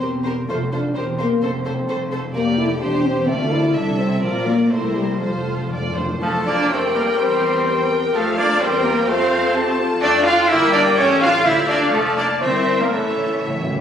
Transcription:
Already playing: C4
0.00 E1 E2 G4 A#4
0.24 G4 A#4 C5
0.48 F1 F2 A3 F4 A4 C5
0.72 D4 F4 A4 C5
0.95 E1 E2 C4 G4 A#4 C5
1.19 A#3 G4 A#4 C5
1.43 F1 F2 C4 A4 C5
1.64 A4 C5
1.88 F1 F2 A4 C5
2.10 A4 C5
2.33 F1 F2 A#3 G4 A#4 D5
2.58 E4 A4
2.82 E1 E2 D4 G4 C5
3.05 C4
3.28 D2 A3 F4 A4 D5
3.52 E4
3.76 C2 C3 D4 E4 A4 E5
3.98 C4
4.21 A#1 A#2 F3 F4 A#4 D5
4.46 A#3
4.70 C2 C3 A3 E4 A#4 C5
4.95 G3
5.20 F1 F2 F3 F4 A4 C5
5.29 F2
5.37 F2
5.46 F2
5.53 F2
5.61 F2
5.69 F2 D5
5.77 F2
5.85 F2
5.92 F2
5.96 C5
6.00 F2
6.08 F2
6.22 F2 F3 A3 F4 A4 C5 A5
6.46 A#3 D4 D5
6.70 F2 A3 C4 G4 A4 A#4 C5 D5 G5
6.94 G3 A#3 A#4
7.18 E2 G3 C4 G4 C5
7.43 A#4
7.67 G4 C5 G5
7.91 A#4
8.13 F2 F3 A3 F4 A4 C5 F5
8.37 A#3 D4 D5
8.59 E2 G3 C4 G4 A#4 C5 G5
8.83 G3 A#3 A#4
9.06 F2 A3 C4 F4 A4 C5 F5
9.30 A4
9.54 G4 A4 A5
9.77 F4
10.01 F2 A3 D4 A4 D5 G5
10.25 D4 F4 F5
10.48 G1 E4 G4 A#4 D5 E5
10.52 A#3
10.72 A#3 D4 D5
10.96 A1 A3 C#4 A4 C#5
11.20 D4 F4 F5
11.44 D2 C4 E4 F4 G4 D5 E5 F5
11.68 A#3 D4 D5
11.92 F1 F3 A3 F4 A4 D5 A5
11.96 D5
12.16 A#3 D4 D5
12.40 G1 A3 C4 E4 A#4 C5 D5 E5
12.79 G3 A#3 A#4
12.91 A1 A2 E3 A3 E4 A4 C#5 E5
13.00 A2
13.08 A2
13.17 A2
13.24 A2
13.33 A2
13.41 A2
13.48 A2
13.55 A2
13.62 A2
13.71 A2

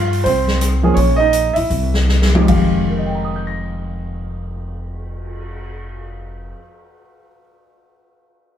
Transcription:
Already playing: G2 F4 F5
0.13 open hi-hat
0.24 C2 C4 C5, kick, open hi-hat
0.48 snare
0.61 cross-stick, closed hi-hat
0.83 F3 A#3 C#4 G#4
0.94 A#1 C#4 C#5, kick, open hi-hat
1.16 D#4 D#5
1.33 closed hi-hat
1.53 A#1 E4 E5, open hi-hat
1.70 C2, kick, open hi-hat
1.94 snare
2.09 snare
2.22 snare
2.35 F3 G#3 D#4 G4, mid tom
2.48 F1 F2 D#3 G#3 G4 F5, kick, crash
2.73 cymbal swell
2.90 A#4
2.98 D#5
3.06 G5
3.15 A#5
3.25 D#6
3.36 G6
3.47 A#6

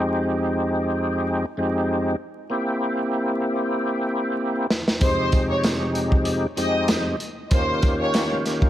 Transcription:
0.00 F2 G#3 C4 D#4 G4
1.57 F2 G#3 C4 D#4 G4
2.50 A#3 C4 E4 G4
4.71 snare
4.88 snare
5.01 F2 C3 G#3 D#4 G4 C5, kick, closed hi-hat
5.32 kick, closed hi-hat
5.50 C#5
5.64 snare, closed hi-hat, tambourine
5.95 closed hi-hat
6.12 kick
6.25 closed hi-hat
6.57 F2 G#3 C4 D#4 G4 D#5, closed hi-hat
6.88 snare, closed hi-hat, tambourine
7.20 closed hi-hat
7.51 D#3 A#3 C#4 F4 G4 C5, kick, closed hi-hat
7.82 kick, closed hi-hat
8.00 C#5
8.14 snare, closed hi-hat, tambourine
8.45 snare, closed hi-hat
8.62 kick

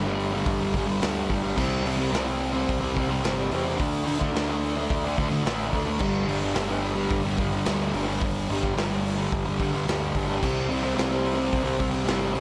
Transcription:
Already playing: G1 G2
0.04 D3 G3
0.20 open hi-hat
0.32 D3 G3
0.46 G1, kick, open hi-hat
0.61 D3 G3
0.73 G1 G2 D3 G3, kick, open hi-hat
0.87 D3 G3
0.99 D2 G2 D3 G3, snare, open hi-hat
1.28 G1 G2 D3 G3, kick, open hi-hat
1.42 D3 G3
1.56 C2 C3 G3 C4, kick, crash
1.83 C2 C3 G3 C4, open hi-hat
1.97 G3 C4
2.11 C2 C3 G3 C4, snare, open hi-hat
2.25 G3 C4
2.42 open hi-hat
2.52 G3 C4
2.69 C2, kick, open hi-hat
2.81 G3 C4
2.94 C2 C3 G3 C4, kick, open hi-hat
3.09 G3 C4
3.21 G1 C3 G3 C4, snare, open hi-hat
3.51 E2 C3 G3 C4, open hi-hat
3.64 G3 C4
3.76 D3 A3 D4, open hi-hat
3.80 D2, kick
4.04 D2 D3 A3 D4, open hi-hat
4.19 A3 D4, kick
4.32 D2 D3 A3 D4, open hi-hat
4.37 snare
4.49 A3 D4
4.63 open hi-hat
4.76 A3 D4
4.90 D2, kick, open hi-hat
5.04 A3 D4
5.16 D2 D3 A3 D4, kick, open hi-hat
5.29 A3 D4
5.44 A1 D3 A3 D4, snare, open hi-hat
5.71 D2 D3 A3 D4, kick, open hi-hat
5.86 A3 D4
5.99 G1 G2 D3 G3, kick, crash
6.26 G1 G2 D3 G3, open hi-hat
6.41 D3 G3
6.54 G1 G2 D3 G3, snare, open hi-hat
6.68 D3 G3
6.82 open hi-hat
6.95 D3 G3
7.10 G1, kick, open hi-hat
7.23 D3 G3
7.37 G1 G2 D3 G3, kick, open hi-hat
7.53 D3 G3
7.65 D2 G2 D3 G3, snare, open hi-hat
7.93 G1 G2 D3 G3, open hi-hat
8.06 D3 G3
8.20 G1 G2 D3 G3, kick, open hi-hat
8.48 G1 G2 D3 G3, open hi-hat
8.60 D3 G3, kick
8.74 G1 G2 D3 G3, open hi-hat
8.78 snare
8.88 D3 G3
9.05 open hi-hat
9.17 D3 G3
9.32 G1, kick, open hi-hat
9.46 D3 G3
9.58 G1 G2 D3 G3, kick, open hi-hat
9.72 D3 G3
9.85 D2 G2 D3 G3, snare, open hi-hat
10.13 G1 G2 D3 G3, kick, open hi-hat
10.26 D3 G3
10.40 C2 C3 G3 C4, kick, crash
10.68 C2 C3 G3 C4, open hi-hat
10.83 G3 C4
10.95 C3 G3 C4, open hi-hat
10.99 C2, snare
11.09 G3 C4
11.26 open hi-hat
11.35 G3 C4
11.53 C2, kick, open hi-hat
11.63 G3 C4
11.77 C2 C3 G3 C4, kick, open hi-hat
11.91 C4
11.96 G3
12.05 G1 C3 G3 C4, snare, open hi-hat
12.34 C2 C3 G3, open hi-hat

